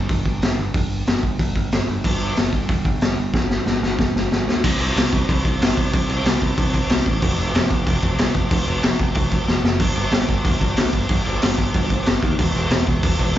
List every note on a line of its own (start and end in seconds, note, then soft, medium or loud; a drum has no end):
0.09 0.23 G1 medium
0.09 kick loud
0.09 open hi-hat medium
0.26 0.40 G1 medium
0.26 kick medium
0.42 0.57 G1 medium
0.42 snare loud
0.42 open hi-hat medium
0.59 0.73 G1 medium
0.74 1.02 G1 loud
0.74 kick loud
0.74 open hi-hat medium
1.07 1.21 G1 medium
1.07 snare loud
1.07 open hi-hat medium
1.23 1.37 G1 medium
1.23 kick medium
1.39 1.53 G1 medium
1.39 kick loud
1.39 open hi-hat medium
1.56 1.69 G1 medium
1.56 kick medium
1.72 1.86 G1 medium
1.72 snare loud
1.72 open hi-hat medium
1.90 2.03 G1 medium
2.04 2.32 G1 loud
2.04 kick loud
2.04 crash loud
2.36 2.52 G1 medium
2.36 snare loud
2.36 open hi-hat medium
2.53 2.67 G1 medium
2.53 kick medium
2.69 2.83 G1 loud
2.69 kick loud
2.69 open hi-hat medium
2.85 2.99 G1 medium
2.85 kick loud
3.01 3.16 G1 medium
3.01 snare loud
3.01 open hi-hat medium
3.18 3.32 G1 medium
3.34 3.62 G1 loud
3.34 kick loud
3.34 snare medium
3.51 snare medium
3.66 3.80 G1 loud
3.66 snare medium
3.82 3.96 G1 medium
3.82 snare medium
3.99 4.12 G1 medium
3.99 kick loud
3.99 snare medium
4.15 4.29 G1 medium
4.15 snare medium
4.32 4.45 G1 medium
4.32 snare loud
4.48 4.61 D2 medium
4.48 snare medium
4.64 4.75 C2 loud
4.64 kick loud
4.64 crash loud
4.81 4.91 C2 medium
4.81 crash medium
4.96 5.07 C2 loud
4.96 snare loud
4.96 crash medium
5.13 5.23 C2 medium
5.13 kick medium
5.13 crash medium
5.29 5.39 C2 loud
5.29 kick loud
5.29 crash medium
5.45 5.55 C2 medium
5.45 kick loud
5.45 crash medium
5.61 5.72 G1 medium
5.61 snare loud
5.61 crash medium
5.77 5.88 C2 medium
5.77 kick medium
5.77 crash medium
5.94 6.04 C2 loud
5.94 kick loud
5.94 crash medium
6.09 6.20 C2 loud
6.09 crash medium
6.25 6.36 C2 loud
6.25 snare loud
6.25 crash medium
6.42 6.52 C2 medium
6.42 kick medium
6.42 crash medium
6.58 6.79 C2 loud
6.58 kick loud
6.58 crash medium
6.74 kick loud
6.74 crash medium
6.89 7.01 C2 loud
6.89 snare loud
6.89 crash medium
7.06 7.17 A1 medium
7.06 kick medium
7.06 crash medium
7.22 7.33 F1 loud
7.22 kick loud
7.22 crash loud
7.38 7.49 F1 medium
7.38 crash medium
7.55 7.65 F1 loud
7.55 snare loud
7.55 crash medium
7.70 7.81 F1 loud
7.70 kick medium
7.70 crash medium
7.87 7.97 F1 loud
7.87 kick loud
7.87 crash medium
8.03 8.14 F1 medium
8.03 kick loud
8.03 crash medium
8.18 8.30 C2 medium
8.18 snare loud
8.18 crash medium
8.34 8.46 F1 medium
8.34 kick loud
8.34 crash medium
8.51 8.62 F1 loud
8.51 kick loud
8.51 crash loud
8.67 8.78 F1 medium
8.67 crash medium
8.83 8.95 F1 loud
8.83 snare loud
8.83 crash medium
8.99 9.10 F1 loud
8.99 kick medium
8.99 crash medium
9.15 9.37 F1 loud
9.15 kick loud
9.15 crash medium
9.31 kick loud
9.31 crash medium
9.48 9.59 F1 medium
9.48 snare medium
9.64 9.80 F#1 medium
9.64 snare medium
9.80 9.91 G1 loud
9.80 kick loud
9.80 crash loud
9.96 10.07 G1 medium
9.96 crash medium
10.12 10.23 G1 loud
10.12 snare loud
10.12 crash loud
10.28 10.40 G1 medium
10.28 kick medium
10.28 crash medium
10.45 10.56 G1 loud
10.45 kick loud
10.45 crash medium
10.61 10.72 G1 medium
10.61 kick loud
10.61 crash medium
10.77 10.88 D2 medium
10.77 snare loud
10.77 crash medium
10.93 11.04 G1 medium
10.93 kick medium
10.93 crash medium
11.09 11.20 G1 loud
11.09 kick loud
11.09 crash medium
11.25 11.38 G1 loud
11.25 crash medium
11.42 11.54 G1 loud
11.42 snare loud
11.42 crash loud
11.58 11.69 G1 medium
11.58 kick medium
11.58 crash medium
11.74 11.96 G1 loud
11.74 kick loud
11.74 crash medium
11.90 kick loud
11.90 crash medium
12.06 12.18 G1 medium
12.06 snare loud
12.06 crash medium
12.22 12.33 D#2 medium
12.22 kick loud
12.22 crash medium
12.39 12.50 E1 loud
12.39 kick loud
12.39 crash loud
12.54 12.65 E1 loud
12.54 crash medium
12.70 12.82 E1 loud
12.70 snare loud
12.70 crash medium
12.87 12.98 E1 loud
12.87 kick medium
12.87 crash medium
13.03 13.14 E1 loud
13.03 kick loud
13.03 crash loud
13.19 13.30 E1 medium
13.19 kick medium
13.19 crash medium
13.35 13.38 B1 medium